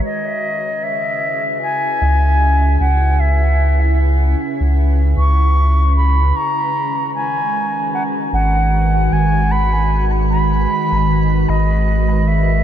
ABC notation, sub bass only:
X:1
M:4/4
L:1/16
Q:"Swing 16ths" 1/4=76
K:G#m
V:1 name="Sub bass" clef=bass
z8 z2 C,,4 C,,2- | C,,6 z C,,3 C,,6 | z8 z2 G,,,4 G,,,2- | G,,,6 z G,,,3 G,,,6 |]